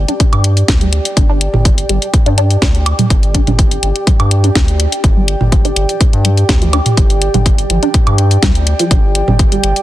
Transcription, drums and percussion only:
0.08 closed hi-hat
0.20 kick, closed hi-hat
0.33 closed hi-hat, low woodblock
0.44 closed hi-hat
0.57 closed hi-hat
0.68 kick, snare, closed hi-hat
0.81 closed hi-hat
0.93 closed hi-hat
1.05 closed hi-hat
1.17 kick, closed hi-hat
1.41 closed hi-hat
1.54 mid tom
1.65 kick, closed hi-hat
1.78 closed hi-hat
1.89 closed hi-hat
2.02 closed hi-hat
2.14 kick, closed hi-hat
2.26 closed hi-hat
2.38 closed hi-hat
2.50 closed hi-hat
2.62 kick, snare, closed hi-hat
2.75 closed hi-hat
2.86 closed hi-hat, low woodblock
2.99 closed hi-hat, mid tom
3.10 kick, closed hi-hat
3.23 closed hi-hat
3.35 kick, closed hi-hat
3.47 closed hi-hat, mid tom
3.59 kick, closed hi-hat
3.71 closed hi-hat
3.83 closed hi-hat
3.96 closed hi-hat
4.07 kick, closed hi-hat
4.20 closed hi-hat, low woodblock
4.31 closed hi-hat
4.44 closed hi-hat
4.55 kick, snare, closed hi-hat
4.68 closed hi-hat
4.80 closed hi-hat
4.92 closed hi-hat
5.04 kick, closed hi-hat
5.28 closed hi-hat
5.41 mid tom
5.52 kick, closed hi-hat
5.65 closed hi-hat
5.76 closed hi-hat
5.89 closed hi-hat
6.01 kick, closed hi-hat
6.13 closed hi-hat
6.25 closed hi-hat
6.37 closed hi-hat
6.49 kick, snare, closed hi-hat
6.62 closed hi-hat
6.73 closed hi-hat, low woodblock
6.86 closed hi-hat, mid tom
6.97 kick, closed hi-hat
7.10 closed hi-hat
7.22 closed hi-hat
7.34 closed hi-hat, mid tom
7.46 kick, closed hi-hat
7.58 closed hi-hat
7.70 closed hi-hat
7.83 closed hi-hat
7.94 kick, closed hi-hat
8.07 closed hi-hat, low woodblock
8.18 closed hi-hat
8.31 closed hi-hat
8.43 kick, snare, closed hi-hat
8.55 closed hi-hat
8.67 closed hi-hat
8.79 closed hi-hat
8.91 kick, closed hi-hat
9.15 closed hi-hat
9.28 mid tom
9.39 kick, closed hi-hat
9.52 closed hi-hat
9.64 closed hi-hat
9.76 closed hi-hat

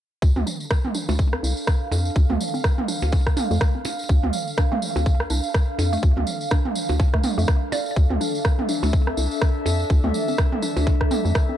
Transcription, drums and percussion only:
0.22 kick, tambourine
0.36 mid tom
0.47 tambourine
0.60 tambourine
0.70 kick, cross-stick, tambourine
0.85 mid tom
0.94 tambourine
1.09 tambourine, percussion blips
1.19 kick
1.33 cross-stick
1.44 tambourine
1.57 tambourine
1.67 kick, cross-stick
1.92 tambourine, percussion blips
2.05 tambourine
2.16 kick, tambourine
2.30 mid tom
2.40 tambourine
2.54 tambourine
2.64 kick, cross-stick, tambourine
2.78 mid tom
2.88 tambourine
3.02 tambourine, percussion blips
3.12 kick, tambourine, percussion blips
3.27 kick, cross-stick
3.37 mid tom, tambourine
3.51 tambourine
3.61 kick, cross-stick, tambourine
3.85 tambourine, percussion blips
3.99 tambourine
4.09 kick, tambourine
4.23 mid tom
4.33 tambourine
4.48 tambourine
4.58 kick, cross-stick, tambourine
4.72 mid tom
4.82 tambourine
4.96 tambourine, percussion blips
5.06 kick, tambourine
5.20 cross-stick
5.30 tambourine
5.43 tambourine
5.54 kick, cross-stick, tambourine
5.79 tambourine, percussion blips
5.93 tambourine
6.03 kick, tambourine
6.17 mid tom
6.27 tambourine
6.41 tambourine
6.50 kick, cross-stick, tambourine
6.65 mid tom
6.75 tambourine
6.89 tambourine, percussion blips
7.00 kick, tambourine, percussion blips
7.14 kick, cross-stick
7.23 mid tom, tambourine
7.39 tambourine
7.48 kick, cross-stick, tambourine
7.72 tambourine, percussion blips
7.86 tambourine
7.96 kick, tambourine
8.10 mid tom
8.21 tambourine
8.35 tambourine
8.45 kick, cross-stick
8.59 mid tom
8.69 tambourine
8.83 tambourine, percussion blips
8.93 kick, tambourine
9.07 cross-stick
9.17 tambourine
9.31 tambourine
9.42 kick, cross-stick, tambourine
9.66 tambourine, percussion blips
9.80 tambourine
9.90 kick, tambourine
10.04 mid tom
10.14 tambourine
10.28 tambourine
10.38 kick, cross-stick, tambourine
10.52 mid tom
10.62 tambourine
10.77 tambourine, percussion blips
10.87 kick, percussion blips
11.01 kick, cross-stick
11.11 mid tom, tambourine
11.25 tambourine
11.35 kick, cross-stick, tambourine

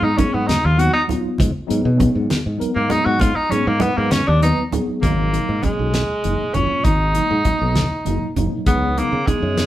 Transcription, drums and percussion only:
0.18 kick, closed hi-hat, low conga
0.49 snare, closed hi-hat, high conga
0.79 closed hi-hat
1.09 closed hi-hat, low conga
1.38 kick, closed hi-hat, high conga
1.70 closed hi-hat
2.00 kick, closed hi-hat, low conga
2.30 snare, closed hi-hat, high conga
2.61 closed hi-hat, low conga
2.90 closed hi-hat, low conga
3.20 kick, closed hi-hat, high conga
3.52 closed hi-hat
3.80 closed hi-hat, low conga
4.11 snare, closed hi-hat, high conga
4.42 closed hi-hat
4.57 low conga
4.72 closed hi-hat, low conga
5.02 kick, closed hi-hat, high conga, low conga
5.34 closed hi-hat
5.48 low conga
5.63 kick, closed hi-hat, low conga
5.94 snare, closed hi-hat, high conga
6.09 low conga
6.24 closed hi-hat
6.54 closed hi-hat, low conga
6.84 kick, closed hi-hat, high conga, low conga
7.15 closed hi-hat
7.31 low conga
7.45 kick, closed hi-hat, low conga
7.75 snare, closed hi-hat, high conga
7.92 low conga
8.06 closed hi-hat
8.36 closed hi-hat, low conga
8.66 kick, closed hi-hat, high conga, low conga
8.98 closed hi-hat
9.12 low conga
9.27 kick, closed hi-hat, low conga
9.57 snare, closed hi-hat, high conga

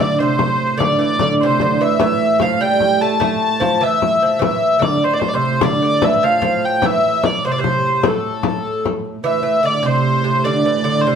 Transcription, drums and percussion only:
0.20 frame drum
0.39 frame drum
0.80 frame drum
1.19 frame drum
1.40 frame drum
1.60 frame drum
2.00 frame drum
2.40 frame drum
2.60 frame drum
2.80 frame drum
3.21 frame drum
3.42 frame drum
3.61 frame drum
4.02 frame drum
4.21 frame drum
4.42 frame drum
4.82 frame drum
5.02 frame drum
5.22 frame drum
5.61 frame drum
6.02 frame drum
6.22 frame drum
6.42 frame drum
6.82 frame drum
7.23 frame drum
7.45 frame drum
7.64 frame drum
8.03 frame drum
8.24 frame drum
8.43 frame drum
8.65 frame drum
8.85 frame drum
9.05 frame drum

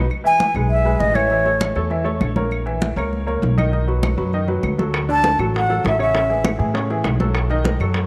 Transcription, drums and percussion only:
0.10 high conga, claves
0.25 high conga
0.40 high conga
0.55 high conga, claves
0.70 high conga
0.86 high conga
1.00 high conga
1.15 high conga, claves
1.30 high conga
1.46 high conga
1.61 high conga, claves
1.75 high conga
1.91 high conga
2.06 high conga
2.21 high conga, claves
2.36 high conga
2.51 high conga, claves
2.67 high conga
2.82 high conga
2.97 high conga, claves
3.13 high conga
3.28 high conga
3.43 high conga
3.58 high conga, claves
3.73 high conga
3.88 high conga
4.03 high conga, claves
4.18 high conga
4.33 high conga
4.48 high conga
4.63 high conga, claves
4.79 high conga
4.94 high bongo, high conga, claves
5.09 high bongo, high conga
5.24 high bongo, high conga
5.40 high bongo, high conga, claves
5.54 high bongo, high conga
5.70 high bongo, high conga
5.85 high bongo, low bongo, high conga
6.00 claves
6.15 high bongo, high conga
6.30 high bongo, high conga
6.44 high bongo, high conga, claves
6.60 high bongo, high conga
6.75 high bongo, high conga
6.90 high bongo, high conga
7.04 high bongo, low bongo, high conga, claves
7.20 high conga
7.35 high bongo, high conga, claves
7.50 high bongo, high conga
7.65 high bongo, high conga
7.79 high bongo, high conga, claves
7.94 high bongo, high conga

